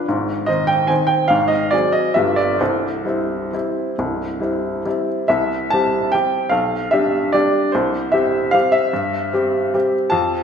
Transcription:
upright piano
0.08 G#1 G#2
0.46 D#3 C4 C5 D#5
0.67 G5
0.87 D#3 C4 C5 G#5
1.07 G5
1.28 G#1 G#2 F5
1.48 D#5
1.71 F#3 C4 G#4 D5
1.92 D#5
2.14 G1 G2 G3 B3 F4 E5
2.36 D5
2.59 C1 C2 C5
3.05 G3 C4 E4
3.53 G3 C4 E4
3.98 C1 C2
4.40 G3 C4 E4
4.85 G3 C4 E4
5.28 C2 E5
5.70 G3 C4 G4 A5
6.12 G3 C4 G4 G5
6.49 B1 F5
6.91 G3 D4 G4 E5
7.33 G3 D4 G4 D5
7.72 C2 C5
8.12 G3 C4 G4 E5
8.51 G3 C4 G4 F5
8.72 E5
8.93 G2
9.33 G3 C4 G4
9.74 G3 C4 G4
10.10 F2 A5

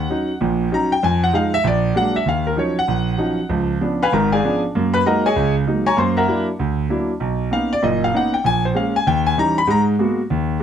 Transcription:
grand piano
Already playing: F#5
0.10 F#3 C#4 D#4
0.41 A#1 A#2
0.71 F#3 C#4 D#4 A#5
0.92 G5
1.03 F2 G#5
1.24 F#5
1.33 F3 G#3 D#4 F5
1.54 E5
1.64 A#1 D5
1.94 F#3 G#3 A#3 D4 F#5
2.16 E5
2.26 D#2 F5
2.47 A#4
2.56 F3 F#3 C#4 D#4 C#5
2.79 F#5
2.88 A#1
3.18 F3 F#3 C#4 D#4
3.49 C#2 F3
3.81 F3 B3 C#4 D4
4.03 B4 F5 G#5 B5
4.12 G#1 G#2 A#4 A#5
4.32 G#4 D5 F5 G#5
4.44 F3 B3 C#4 D4
4.75 F#2 A#3
4.94 B4 B5
5.06 F#3 G#3 A#3 D#4 A#4 D#5 F#5 A#5
5.26 G#4 C#5 D#5 G#5
5.36 C#2 C#3
5.66 F#3 G#3 A#3 D#4
5.86 C#5 G#5 A#5 C#6
5.97 F#2 A#3 C5 C6
6.17 A#4 E5 F#5 A#5
6.27 F#3 A#3 D4 E4
6.59 D2
6.89 F#3 A#3 D4 E4
7.20 B1
7.51 A#3 B3 C#4 D#4 F5
7.73 D5
7.82 F#1 A#2 D#5
8.04 F5
8.14 A#3 B3 C#4 D#4 F#5
8.34 G5
8.44 A#1 G#5
8.65 C5
8.74 G#3 A#3 C#4 F5
8.96 G#5
9.07 D#2 G5
9.27 G#5
9.37 E3 G3 C#4 D#4 A#5
9.58 B5
9.67 G#2 G#3 A#5
9.99 G#3 A#3 B3 F#4
10.30 D#2
10.60 G#3

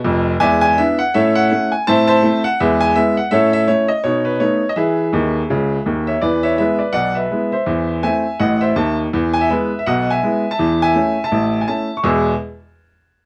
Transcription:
upright piano
0.04 F1 F2
0.40 E2 G#3 D5 E5 G#5
0.61 G#5
0.78 B3 D4 E4 E5
0.99 F#5
1.14 A2 C#4 A4 C#5 E5
1.35 F#5
1.52 A3 C#4 E4
1.72 G#5
1.87 A2 C4 C5 E5 A5
2.07 C5 E5 A5
2.23 A3 C4 E4
2.44 F#5
2.60 E2 G#3 G#4 B4 E5
2.81 G#5
2.96 G#3 B3 E4 E5
3.17 F#5
3.31 A2 C#4 A4 C#5 E5
3.53 E5
3.68 A3 C#4 E4 C#5
3.88 D#5
4.04 B2 D#4 C#5
4.25 B4
4.40 A3 B3 D#4 C#5
4.69 D#5
4.76 E3 G#4 B4 E5
5.13 D#2 D#3
5.50 C#2 C#3
5.86 D#2 D#3
6.07 C#5 E5
6.21 E2 E3 B4 D5
6.43 C#5 E5
6.58 G#3 B3 E4 B4 E5
6.79 B4 D5
6.93 B1 B2 D5 F#5
7.15 B4 E5
7.31 G#3 B3 E4
7.52 C5 E5
7.66 E2 E3
8.03 A3 C4 E4 E5 G#5
8.40 A1 A2 D#5 F#5
8.61 C5 E5
8.76 D#2 D#3 E5 A5
9.13 E2 E3
9.34 G#5
9.41 E5
9.49 G#3 B3 E4 B4 E5
9.79 E5
9.86 B1 B2 D#5 F#5
10.10 E5 G#5
10.23 G#3 B3 E4
10.51 E5 A5
10.59 E2 E3
10.82 E5 G#5
10.96 A3 C#4 E4
11.24 E5 A5
11.32 A1 A2
11.61 G#5
11.68 A3 C#4 E4 E5 A5
11.97 C#6
12.03 E2 B2 G#3 B3 E4 G#4 E6

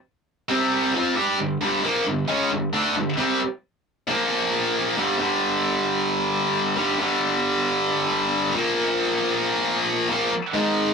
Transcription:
distorted electric guitar
0.49 C3 G3 C4
0.94 F3 C4 F4
1.16 G3 D4 G4
1.38 G2 D3
1.61 G2 D3 G3
1.83 A#2 F3 A#3
2.06 G2 D3
2.28 C#3 G#3 C#4
2.51 G2 D3
2.73 D3 A3 D4
2.96 G2 D3
3.17 C3 G3 C4
4.07 A#2 F3 A#3
4.97 G2 D3 G3
5.19 G2 D3 G3
6.76 G2 D3 G3
6.97 G2 D3 G3
8.54 A#2 F3 A#3
10.10 A#2 F3 A#3
10.54 G#2 D#3 G#3

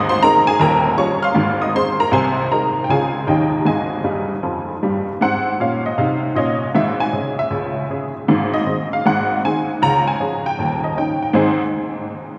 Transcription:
honky-tonk piano
Already playing: G#1 G#2
0.09 C5 C6
0.22 G#3 C4 D#4 A#4 A#5
0.47 G#4 G#5
0.60 D#1 D#2 A#4 G5 A#5
0.97 G3 C#4 F4 C#5 C#6
1.23 F5 C6 F6
1.35 G#1 G#2
1.62 D#5 D#6
1.75 G#3 C4 G#4 C5 C6
2.00 A#4 A#5
2.11 C2 C3 C5 G#5 C6
2.51 G#3 D#4 G#4 A#4 A#5
2.84 G5
2.89 C#2 C#3 G#3 C#4 F4 G#4 F5 G#5
3.27 D#2 D#3 F3 C#4 D#4 G4 D#5 G5
3.65 G#1 G#2 G#4 D#5 G#5
4.04 G2 G3
4.43 F2 F3
4.83 G2 G3
5.21 G#2 C4 F#5
5.60 A#2 C#4 F5
5.86 D#5
5.98 C3 D#4 F5
6.35 A#2 C#4 D#5
6.75 G#1 G#2 E5
7.00 G#5
7.13 C#3 C#4 G#4
7.39 E5
7.50 C#2 C#3
7.90 C#3 C#4 G#4
8.28 G#1 G#2
8.54 D#5
8.66 D#3 C4 G#4
8.93 F5
9.06 G#1 G#2 F#5
9.44 D#3 C4 G#4 G#5
9.82 C#2 C#3 A#5
10.08 G#5
10.20 F3 C#4 G#4
10.46 G5
10.59 D#1 D#2
10.84 D#5
10.97 D#3 C#4 D#4 G5
11.22 G5
11.33 G#2 D#3 C4 D#4 G#4 C5 G#5

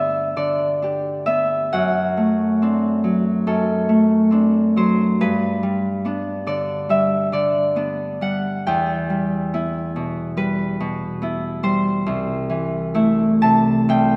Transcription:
harp
Already playing: G2 D3 B3 D4 G4 B4 D5 E5
0.36 D3 D5
0.82 D4 G4
1.26 B3 E5
1.73 F#2 F#5
2.17 A3
2.62 C4 D4
3.04 F#3
3.47 F#2 A4
3.89 A3
4.31 C4 D4
4.76 F#3 C5
5.21 G2 B4
5.63 G3
6.05 B3 D4
6.47 D3 D5
6.89 G3 E5
7.32 D3 D5
7.76 B3 D4
8.21 G3 F#5
8.67 E2 G5
9.10 G3
9.54 B3 E4
9.96 B2
10.37 G3 B4
10.80 B2
11.22 B3 E4
11.63 G3 C5
12.06 C2
12.50 E3
12.94 A3 E4
13.42 C3 A5
13.89 C2 G5

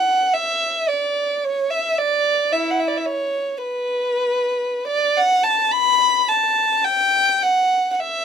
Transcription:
violin
Already playing: F#5
0.33 E5
0.88 D5
1.44 C#5
1.71 E5
1.98 D5
2.52 E4 E5
2.71 F#5
2.80 E5
2.88 D5
2.97 E5
3.06 C#5
3.58 B4
4.87 D5
5.17 F#5
5.44 A5
5.72 B5
6.28 A5
6.85 G5
7.42 F#5
7.92 F#5
8.00 E5

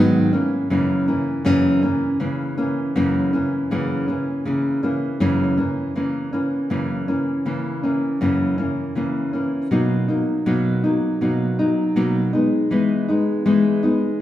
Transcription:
nylon-string guitar
Already playing: G#2 D#3 F#3 B3 D#4
0.33 E3 A#3 C#4
0.70 F#2 C#3 E3 A#3 C#4
1.08 E3 A#3 C#4
1.45 F#2 C#3 E3 A#3 C#4
1.83 E3 A#3 C#4
2.20 C#3 E3 A#3 C#4
2.58 E3 A#3 C#4
2.96 F#2 C#3 E3 A#3 C#4
3.33 E3 A#3 C#4
3.71 F#2 C#3 E3 A#3 C#4
4.08 E3 A#3 C#4
4.45 C#3 E3 A#3 C#4
4.83 E3 A#3 C#4
5.20 F#2 C#3 E3 A#3 C#4
5.57 E3 A#3 C#4
5.95 C#3 E3 A#3 C#4
6.33 E3 A#3 C#4
6.70 F#2 C#3 E3 A#3 C#4
7.08 E3 A#3 C#4
7.46 C#3 E3 A#3 C#4
7.83 E3 A#3 C#4
8.21 F#2 C#3 E3 A#3 C#4
8.58 E3 A#3 C#4
8.95 C#3 E3 A#3 C#4
9.33 E3 A#3 C#4
9.71 B2 F#3 A#3 D#4
10.08 F#3 A#3 D#4
10.46 B2 F#3 A#3 D#4
10.84 F#3 A#3 D#4
11.21 B2 F#3 A#3 D#4
11.59 F#3 A#3 D#4
11.96 B2 F#3 A#3 D#4
12.33 G#3 B3 D#4
12.71 E3 G#3 B3 D#4
13.08 G#3 B3 D#4
13.45 E3 G#3 B3 D#4
13.83 G#3 B3 D#4

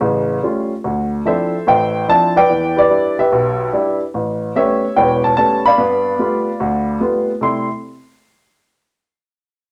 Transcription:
upright piano
0.01 A1 C#3
0.43 G3 A3 C#4 F4
0.84 D2
1.25 F3 C4 D4 E4 A4 C5 E5
1.67 A1 C5 E5 G5
2.08 F3 C4 D4 E4 A5
2.36 B4 D5 G5
2.50 E2 E3
2.77 G4 B4 D5
2.90 G3 D4 E4
3.19 G4 B4 E5
3.32 B1
3.73 G3 D4 E4
4.14 A1
4.55 G3 A3 B3 C#4 G4 C#5 E5
4.96 E1 E2 B4 C#5 G5
5.24 A5
5.37 G3 A3 B3 C#4 A5
5.66 D5 F5 B5
5.78 G2 B3
6.19 G3 A3 B3 F4
6.60 D2
7.00 G3 A3 B3 F4
7.41 C3 G3 A3 E4 C6

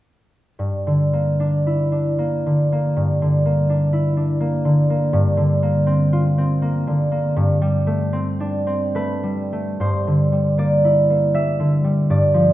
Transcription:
harp
0.59 G2
0.87 D3
1.13 A#3
1.40 D4
1.67 E4
1.92 D4
2.19 A#3
2.46 D3
2.72 A#3
2.96 G2
3.22 D3
3.46 A#3
3.69 D4
3.93 E4
4.17 D4
4.40 A#3
4.65 D3
4.90 A#3
5.13 G2
5.37 D3
5.63 A#3
5.87 C4
6.13 F4
6.38 C4
6.62 A#3
6.87 D3
7.11 A#3
7.36 G2
7.62 G3
7.87 A3
8.13 C4
8.40 D4
8.67 C4
8.95 A3 B4
9.23 G3
9.53 A3
9.80 G2 C5
10.07 D3
10.32 G3
10.58 A#3 D5
10.84 E4
11.10 A#3
11.34 G3 E5
11.60 D3
11.84 G3
12.10 G2 D5
12.34 F3

